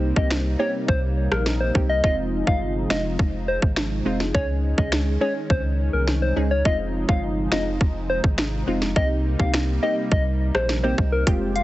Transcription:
0.00 0.12 C2 loud
0.00 4.31 C3 medium
0.00 2.01 G3 medium
0.00 0.13 A#3 medium
0.00 2.01 A#3 medium
0.00 0.13 C4 medium
0.00 0.13 D#4 medium
0.00 6.61 D#4 medium
0.00 0.13 G4 loud
0.16 0.56 C2 loud
0.16 0.56 A#3 medium
0.16 0.56 C4 medium
0.16 0.56 D#4 medium
0.16 0.56 G4 medium
0.16 0.28 D#5 medium
0.16 kick medium
0.31 finger snap medium
0.31 snare loud
0.59 0.86 A#3 medium
0.59 0.86 C4 medium
0.59 0.86 D#4 medium
0.59 0.86 G4 medium
0.59 0.71 C#5 medium
0.88 1.28 C2 loud
0.88 1.00 C5 medium
0.88 kick loud
1.32 1.71 A#1 medium
1.32 1.43 A#4 medium
1.32 cross-stick loud
1.46 snare medium
1.60 1.72 C5 medium
1.75 2.01 C2 medium
1.75 1.91 A#3 medium
1.75 1.91 C4 medium
1.75 1.91 D#4 medium
1.75 1.92 G4 medium
1.75 kick medium
1.89 2.01 D#5 medium
2.03 2.43 F1 loud
2.03 4.32 F3 medium
2.03 2.43 G#3 medium
2.03 6.61 G#3 medium
2.03 2.44 C4 medium
2.03 2.44 D#4 medium
2.03 2.44 F4 loud
2.03 2.15 D#5 loud
2.03 kick loud
2.47 2.86 G1 medium
2.47 2.87 G#3 medium
2.47 2.87 C4 medium
2.47 2.87 D#4 medium
2.47 2.87 F4 medium
2.47 2.59 F5 medium
2.47 kick medium
2.90 3.16 F1 loud
2.90 3.17 G#3 medium
2.90 3.17 C4 medium
2.90 3.17 D#4 medium
2.90 3.17 F4 medium
2.90 3.02 D#5 medium
2.90 finger snap medium
2.90 snare loud
3.19 3.58 F1 loud
3.19 kick medium
3.48 3.60 C5 medium
3.62 4.02 G#1 medium
3.62 kick loud
3.76 finger snap medium
3.76 snare loud
4.05 4.32 F1 medium
4.05 4.22 G#3 medium
4.05 4.22 C4 medium
4.05 4.22 D#4 medium
4.05 4.22 F4 medium
4.20 snare medium
4.34 4.74 C#2 loud
4.34 6.63 D#3 medium
4.34 4.74 G#3 medium
4.34 4.74 C#4 medium
4.34 6.63 C#4 medium
4.34 4.74 D#4 medium
4.34 4.75 G#4 loud
4.34 4.46 C#5 loud
4.34 kick loud
4.78 5.17 C#2 loud
4.78 5.18 G#3 medium
4.78 5.18 C#4 medium
4.78 5.18 D#4 medium
4.78 5.18 G#4 medium
4.78 4.89 D#5 medium
4.78 kick medium
4.92 finger snap medium
4.92 snare loud
5.21 5.47 G#3 medium
5.21 5.48 C#4 medium
5.21 5.48 D#4 medium
5.21 5.48 G#4 medium
5.21 5.33 C#5 medium
5.50 5.89 C#2 loud
5.50 5.62 C5 medium
5.50 kick loud
5.93 6.32 C2 loud
5.93 6.05 A#4 medium
6.08 snare medium
6.22 6.34 C5 medium
6.36 6.63 C#2 medium
6.36 6.53 G#3 medium
6.36 6.53 C#4 medium
6.36 6.53 D#4 medium
6.36 6.53 G#4 medium
6.51 6.63 C#5 medium
6.65 7.05 F1 loud
6.65 11.23 C3 medium
6.65 8.94 F3 medium
6.65 7.05 G#3 medium
6.65 8.94 G#3 medium
6.65 7.05 C4 medium
6.65 11.23 D#4 medium
6.65 7.05 D#4 medium
6.65 7.05 F4 loud
6.65 6.77 D#5 loud
6.65 kick loud
7.08 7.48 G1 medium
7.08 7.48 G#3 medium
7.08 7.48 C4 medium
7.08 7.48 D#4 medium
7.08 7.49 F4 medium
7.08 7.20 F5 medium
7.08 kick medium
7.52 7.78 F1 loud
7.52 7.78 G#3 medium
7.52 7.78 C4 medium
7.52 7.78 D#4 medium
7.52 7.79 F4 medium
7.52 7.63 D#5 medium
7.52 finger snap medium
7.52 snare loud
7.81 8.20 F1 loud
7.81 kick loud
8.10 8.21 C5 medium
8.24 8.63 G#1 medium
8.24 kick loud
8.38 finger snap medium
8.38 snare loud
8.67 8.93 F1 medium
8.67 8.84 G#3 medium
8.67 8.84 C4 medium
8.67 8.84 D#4 medium
8.67 8.84 F4 medium
8.82 snare medium
8.96 9.35 C2 loud
8.96 11.25 G3 medium
8.96 9.36 A#3 medium
8.96 11.25 A#3 medium
8.96 9.36 C4 medium
8.96 9.36 D#4 medium
8.96 9.36 G4 loud
8.96 9.08 D#5 loud
8.96 kick loud
9.39 9.79 C2 loud
9.39 9.79 A#3 medium
9.39 9.79 C4 medium
9.39 9.79 D#4 medium
9.39 9.79 G4 medium
9.39 9.51 F5 medium
9.39 kick medium
9.54 finger snap medium
9.54 snare loud
9.82 10.09 A#3 medium
9.82 10.09 C4 medium
9.82 10.09 D#4 medium
9.82 10.09 G4 medium
9.82 9.94 D#5 medium
10.12 10.51 C2 loud
10.12 10.23 D#5 medium
10.12 kick loud
10.55 10.94 A#1 medium
10.55 10.66 C5 medium
10.55 cross-stick loud
10.69 snare medium
10.83 11.00 A#3 medium
10.83 11.00 C4 medium
10.83 11.00 D#4 medium
10.83 11.00 G4 medium
10.83 10.95 C5 medium
10.98 11.24 C2 loud
10.98 kick medium
11.12 11.24 A#4 medium
11.27 11.63 F1 loud
11.27 11.63 C3 medium
11.27 11.63 G#3 medium
11.27 11.63 C4 medium
11.27 11.63 F4 medium
11.27 11.63 G4 medium
11.27 11.63 G4 loud
11.27 kick loud
11.27 closed hi-hat medium
11.56 11.63 F5 medium
11.56 closed hi-hat medium

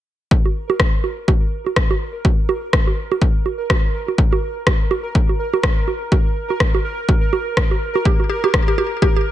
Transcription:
0.31 9.32 A#4 medium
0.31 kick loud
0.45 low bongo soft
0.70 low bongo medium
0.80 kick loud
0.80 cross-stick medium
1.04 low bongo soft
1.28 kick loud
1.28 low bongo medium
1.66 low bongo soft
1.76 kick loud
1.76 cross-stick medium
1.91 low bongo medium
2.25 kick loud
2.25 low bongo soft
2.49 low bongo medium
2.73 kick loud
2.73 cross-stick medium
2.87 low bongo soft
3.12 low bongo medium
3.22 kick loud
3.46 low bongo soft
3.70 kick loud
3.70 cross-stick medium
3.70 low bongo medium
4.08 low bongo soft
4.18 kick loud
4.33 low bongo medium
4.67 kick loud
4.67 cross-stick medium
4.67 low bongo soft
4.91 low bongo medium
5.15 kick loud
5.29 low bongo soft
5.53 low bongo medium
5.63 kick loud
5.63 cross-stick medium
5.88 low bongo soft
6.12 kick loud
6.12 low bongo medium
6.50 low bongo soft
6.60 kick loud
6.60 cross-stick medium
6.75 low bongo medium
7.09 kick loud
7.09 low bongo soft
7.33 low bongo medium
7.57 kick loud
7.57 cross-stick medium
7.71 low bongo soft
7.95 low bongo medium
8.05 8.12 G4 medium
8.05 kick loud
8.20 low bongo soft
8.29 8.36 G4 medium
8.44 8.49 G4 medium
8.44 low bongo medium
8.54 kick loud
8.54 cross-stick medium
8.68 8.73 G4 medium
8.78 8.85 G4 medium
8.78 low bongo soft
9.02 9.09 G4 medium
9.02 kick loud
9.02 low bongo medium
9.16 9.21 G4 medium

